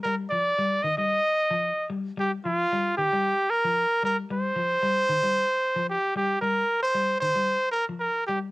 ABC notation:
X:1
M:4/4
L:1/16
Q:1/4=113
K:Cm
V:1 name="Trumpet"
B2 d4 e e6- e z2 | G2 F4 G4 B4 B2 | c12 G2 G2 | B3 c3 c4 B2 B2 G2 |]
V:2 name="Clean electric guitar" clef=bass
G,2 F,2 G,2 E, G,2 z2 F,2 z G,2 | G,2 F,2 G,2 E, G,2 z2 F,2 z G,2 | G,2 F,2 G,2 E, G,2 z2 F,2 z G,2 | G,2 z2 G,2 E, G,2 z2 F,2 z G,2 |]